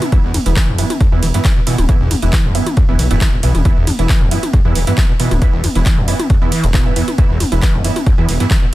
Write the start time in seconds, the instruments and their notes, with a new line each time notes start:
0.02 closed hi-hat, mid tom
0.12 acid bass E2, synth stab E3 B3 E4, kick, closed hi-hat
0.24 detuned saw bass E1, acid bass E2
0.34 acid bass E2, open hi-hat, mid tom, ride
0.46 detuned saw bass E1, synth stab E3 B3 E4, closed hi-hat
0.56 acid bass E3, kick, clap, closed hi-hat
0.68 detuned saw bass E1, acid bass E2
0.78 acid bass G2, synth stab E3 B3 E4, open hi-hat, ride
0.90 closed hi-hat, mid tom
1.01 acid bass F2, kick, closed hi-hat
1.12 detuned saw bass E2, acid bass E2, synth stab E3 B3 E4
1.22 detuned saw bass E1, acid bass E3, open hi-hat, ride
1.34 acid bass G2, synth stab E3 B3 E4, closed hi-hat
1.45 acid bass E3, kick, clap, closed hi-hat
1.56 acid bass B2
1.67 acid bass B2, synth stab E3 B3 E4, open hi-hat, ride
1.78 detuned saw bass D1, closed hi-hat, mid tom
1.89 acid bass E2, synth stab E3 B3 E4, kick, closed hi-hat
2.00 detuned saw bass E1, acid bass E2
2.11 acid bass E2, open hi-hat, mid tom, ride
2.22 detuned saw bass E1, synth stab E3 B3 E4, closed hi-hat
2.33 acid bass E3, kick, clap, closed hi-hat
2.45 detuned saw bass E1, acid bass E2
2.55 acid bass G2, synth stab E3 B3 E4, open hi-hat, ride
2.67 closed hi-hat, mid tom
2.77 acid bass F2, kick, closed hi-hat
2.89 detuned saw bass D1, acid bass E2, synth stab E3 B3 E4
2.99 detuned saw bass B1, acid bass E3, open hi-hat, ride
3.11 detuned saw bass E1, acid bass G2, synth stab E3 B3 E4, closed hi-hat
3.21 acid bass E3, kick, clap, closed hi-hat
3.33 detuned saw bass E1, acid bass B2
3.43 detuned saw bass B1, acid bass B2, synth stab E3 B3 E4, open hi-hat, ride
3.55 detuned saw bass E1, closed hi-hat, mid tom
3.65 acid bass E2, synth stab E3 B3 E4, kick, closed hi-hat
3.77 detuned saw bass E1, acid bass E2
3.87 acid bass E2, open hi-hat, mid tom, ride
3.99 detuned saw bass E1, synth stab E3 B3 E4, closed hi-hat
4.09 acid bass E3, kick, clap, closed hi-hat
4.21 detuned saw bass E1, acid bass E2
4.31 acid bass G2, synth stab E3 B3 E4, open hi-hat, ride
4.43 closed hi-hat, mid tom
4.53 acid bass F2, kick, closed hi-hat
4.65 detuned saw bass E2, acid bass E2, synth stab E3 B3 E4
4.75 detuned saw bass E1, acid bass E3, open hi-hat, ride
4.87 acid bass G2, synth stab E3 B3 E4, closed hi-hat
4.98 acid bass E3, kick, clap, closed hi-hat
5.09 acid bass B2
5.20 acid bass B2, synth stab E3 B3 E4, open hi-hat, ride
5.31 detuned saw bass D1, closed hi-hat, mid tom
5.42 acid bass E2, synth stab E3 B3 E4, kick, closed hi-hat
5.53 detuned saw bass E1, acid bass E2
5.64 acid bass E2, open hi-hat, mid tom, ride
5.75 detuned saw bass E1, synth stab E3 B3 E4, closed hi-hat
5.86 acid bass E3, kick, clap, closed hi-hat
5.97 detuned saw bass E1, acid bass E2
6.08 acid bass G2, synth stab E3 B3 E4, open hi-hat, ride
6.20 closed hi-hat, mid tom
6.30 acid bass F2, kick, closed hi-hat
6.42 acid bass E2, synth stab E3 B3 E4
6.52 acid bass E3, open hi-hat, ride
6.64 detuned saw bass E1, acid bass D2, closed hi-hat
6.74 acid bass B2, synth stab E3 B3 E4, kick, clap, closed hi-hat
6.86 acid bass F2, synth stab E3 B3 E4
6.96 acid bass E2, synth stab E3 B3 E4, open hi-hat, ride
7.08 closed hi-hat, mid tom
7.18 acid bass E2, synth stab E3 B3 E4, kick, closed hi-hat
7.30 detuned saw bass E1, acid bass E2
7.40 acid bass E2, open hi-hat, mid tom, ride
7.52 detuned saw bass E1, synth stab E3 B3 E4, closed hi-hat
7.62 acid bass E3, kick, clap, closed hi-hat
7.74 detuned saw bass E1, acid bass E2
7.84 acid bass G2, synth stab E3 B3 E4, open hi-hat, ride
7.96 closed hi-hat, mid tom
8.06 acid bass F2, kick, closed hi-hat
8.18 acid bass E2, detuned saw bass E2, synth stab E3 B3 E4
8.29 detuned saw bass E1, acid bass E3, open hi-hat, ride
8.40 acid bass G2, synth stab E3 B3 E4, closed hi-hat
8.51 acid bass E3, kick, clap, closed hi-hat
8.62 acid bass B2